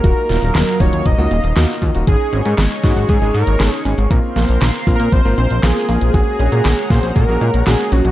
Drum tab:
HH |x-xxx-oxx-xxx-ox|x-xxx-oxx-xxx-ox|x-xxx-oxx-xxx-ox|x-xxx-oxx-xxx-ox|
CP |----x-------x---|----x-------x---|----x-------x---|----x-------x---|
SD |--o-o-------o---|----o-o-----o---|--o-o-------o---|----o-o-----o---|
BD |o-----o-o-----o-|o-----o-o-------|o-----o-o-------|o-----o-o-------|